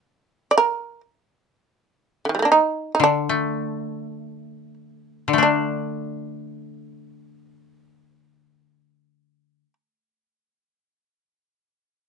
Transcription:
0, 0, Header, 1, 3, 480
1, 0, Start_track
1, 0, Tempo, 895522
1, 557, Time_signature, 4, 2, 24, 8
1, 557, Tempo, 958466
1, 1037, Tempo, 1027397
1, 1517, Tempo, 1132075
1, 1997, Tempo, 1247401
1, 3437, Tempo, 1271186
1, 5017, End_track
2, 0, Start_track
2, 0, Title_t, "Shamisen"
2, 0, Program_c, 0, 106
2, 274, Note_on_c, 0, 74, 52
2, 306, Note_off_c, 0, 74, 0
2, 308, Note_on_c, 0, 70, 68
2, 538, Note_off_c, 0, 70, 0
2, 1156, Note_on_c, 0, 50, 29
2, 1173, Note_off_c, 0, 50, 0
2, 1175, Note_on_c, 0, 51, 31
2, 1200, Note_on_c, 0, 55, 32
2, 1219, Note_off_c, 0, 55, 0
2, 1221, Note_on_c, 0, 57, 36
2, 1234, Note_off_c, 0, 57, 0
2, 1236, Note_on_c, 0, 58, 38
2, 1249, Note_on_c, 0, 62, 39
2, 1253, Note_off_c, 0, 51, 0
2, 1277, Note_off_c, 0, 62, 0
2, 1279, Note_on_c, 0, 63, 62
2, 1315, Note_off_c, 0, 58, 0
2, 1465, Note_off_c, 0, 63, 0
2, 1480, Note_on_c, 0, 63, 46
2, 1519, Note_off_c, 0, 63, 0
2, 1521, Note_on_c, 0, 62, 62
2, 2220, Note_off_c, 0, 62, 0
2, 2486, Note_on_c, 0, 62, 49
2, 4129, Note_off_c, 0, 62, 0
2, 5017, End_track
3, 0, Start_track
3, 0, Title_t, "Koto"
3, 0, Program_c, 1, 107
3, 1503, Note_on_c, 1, 50, 35
3, 1631, Note_on_c, 1, 57, 31
3, 2424, Note_off_c, 1, 50, 0
3, 2428, Note_on_c, 1, 50, 33
3, 2445, Note_off_c, 1, 57, 0
3, 2450, Note_on_c, 1, 57, 33
3, 2468, Note_on_c, 1, 62, 33
3, 4088, Note_off_c, 1, 50, 0
3, 4109, Note_off_c, 1, 57, 0
3, 4127, Note_off_c, 1, 62, 0
3, 5017, End_track
0, 0, End_of_file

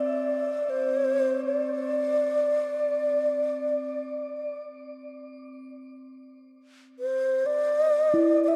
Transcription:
0, 0, Header, 1, 3, 480
1, 0, Start_track
1, 0, Tempo, 500000
1, 8217, End_track
2, 0, Start_track
2, 0, Title_t, "Alto flute"
2, 0, Program_c, 0, 73
2, 2, Note_on_c, 0, 74, 72
2, 668, Note_on_c, 0, 72, 72
2, 683, Note_off_c, 0, 74, 0
2, 1384, Note_off_c, 0, 72, 0
2, 1389, Note_on_c, 0, 74, 78
2, 4440, Note_off_c, 0, 74, 0
2, 6714, Note_on_c, 0, 72, 78
2, 7162, Note_on_c, 0, 74, 85
2, 7176, Note_off_c, 0, 72, 0
2, 8091, Note_off_c, 0, 74, 0
2, 8100, Note_on_c, 0, 74, 84
2, 8143, Note_on_c, 0, 76, 72
2, 8157, Note_off_c, 0, 74, 0
2, 8217, Note_off_c, 0, 76, 0
2, 8217, End_track
3, 0, Start_track
3, 0, Title_t, "Singing bowl"
3, 0, Program_c, 1, 14
3, 0, Note_on_c, 1, 60, 46
3, 5916, Note_off_c, 1, 60, 0
3, 7812, Note_on_c, 1, 64, 61
3, 8217, Note_off_c, 1, 64, 0
3, 8217, End_track
0, 0, End_of_file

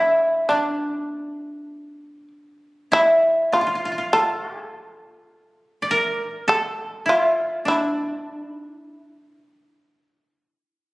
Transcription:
0, 0, Header, 1, 3, 480
1, 0, Start_track
1, 0, Tempo, 1207243
1, 1163, Time_signature, 4, 2, 24, 8
1, 1164, Tempo, 1185771
1, 2604, Tempo, 1158301
1, 4449, End_track
2, 0, Start_track
2, 0, Title_t, "Shamisen"
2, 0, Program_c, 0, 106
2, 0, Note_on_c, 0, 64, 60
2, 177, Note_off_c, 0, 64, 0
2, 194, Note_on_c, 0, 62, 50
2, 905, Note_off_c, 0, 62, 0
2, 1166, Note_on_c, 0, 64, 69
2, 1390, Note_off_c, 0, 64, 0
2, 1409, Note_on_c, 0, 65, 67
2, 1631, Note_off_c, 0, 65, 0
2, 1651, Note_on_c, 0, 69, 82
2, 1995, Note_off_c, 0, 69, 0
2, 1995, Note_on_c, 0, 70, 82
2, 2064, Note_off_c, 0, 70, 0
2, 2064, Note_on_c, 0, 69, 82
2, 2181, Note_off_c, 0, 69, 0
2, 2181, Note_on_c, 0, 70, 82
2, 2250, Note_off_c, 0, 70, 0
2, 2250, Note_on_c, 0, 69, 82
2, 2589, Note_off_c, 0, 69, 0
2, 2607, Note_on_c, 0, 69, 69
2, 2832, Note_off_c, 0, 69, 0
2, 2856, Note_on_c, 0, 65, 74
2, 3078, Note_off_c, 0, 65, 0
2, 3100, Note_on_c, 0, 64, 65
2, 4449, Note_off_c, 0, 64, 0
2, 4449, End_track
3, 0, Start_track
3, 0, Title_t, "Koto"
3, 0, Program_c, 1, 107
3, 0, Note_on_c, 1, 62, 52
3, 0, Note_on_c, 1, 64, 48
3, 199, Note_off_c, 1, 62, 0
3, 200, Note_on_c, 1, 62, 43
3, 872, Note_off_c, 1, 64, 0
3, 1160, Note_on_c, 1, 64, 60
3, 1165, Note_off_c, 1, 62, 0
3, 1406, Note_on_c, 1, 65, 55
3, 1430, Note_off_c, 1, 64, 0
3, 1439, Note_off_c, 1, 65, 0
3, 1441, Note_on_c, 1, 65, 43
3, 1462, Note_off_c, 1, 65, 0
3, 1463, Note_on_c, 1, 65, 50
3, 1496, Note_off_c, 1, 65, 0
3, 1498, Note_on_c, 1, 65, 41
3, 1537, Note_off_c, 1, 65, 0
3, 1539, Note_on_c, 1, 65, 50
3, 1563, Note_off_c, 1, 65, 0
3, 1564, Note_on_c, 1, 65, 42
3, 1588, Note_off_c, 1, 65, 0
3, 1590, Note_on_c, 1, 65, 49
3, 1650, Note_off_c, 1, 65, 0
3, 1650, Note_on_c, 1, 65, 69
3, 1869, Note_off_c, 1, 65, 0
3, 1869, Note_on_c, 1, 69, 69
3, 2336, Note_on_c, 1, 74, 57
3, 2370, Note_on_c, 1, 70, 80
3, 2394, Note_off_c, 1, 69, 0
3, 2601, Note_on_c, 1, 69, 70
3, 2625, Note_off_c, 1, 70, 0
3, 2841, Note_on_c, 1, 64, 69
3, 2899, Note_off_c, 1, 64, 0
3, 2899, Note_on_c, 1, 65, 69
3, 2993, Note_off_c, 1, 74, 0
3, 3088, Note_on_c, 1, 62, 62
3, 3113, Note_off_c, 1, 65, 0
3, 3382, Note_off_c, 1, 62, 0
3, 3382, Note_on_c, 1, 63, 62
3, 3389, Note_off_c, 1, 69, 0
3, 3573, Note_off_c, 1, 63, 0
3, 3573, Note_on_c, 1, 64, 62
3, 4449, Note_off_c, 1, 64, 0
3, 4449, End_track
0, 0, End_of_file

